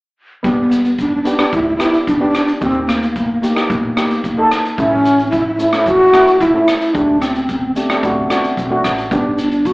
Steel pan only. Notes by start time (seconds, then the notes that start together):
0.43 B3 D4 G4
1.25 B3 D4 G4
1.38 B3 D4 G4
1.79 B3 D4 G4
2.20 B3 D4 G4
2.61 A#3 D#4 G4
3.42 A#3 D#4 G4
3.55 A#3 D#4 G4
3.96 A#3 D#4 G4
4.38 A#3 D#4 A4
4.78 A3 C#4 E4
5.59 A3 C#4 E4
5.72 A3 C#4 E4
6.12 A3 C#4 E4
6.54 A3 C#4 E4
6.94 A3 D4 G4
7.76 A3 D4 G4
7.89 A3 D4 G4
8.03 A3 D4 F#4
8.29 A3 D4 F#4
8.70 A3 D4 F#4
9.11 B3 D4 G4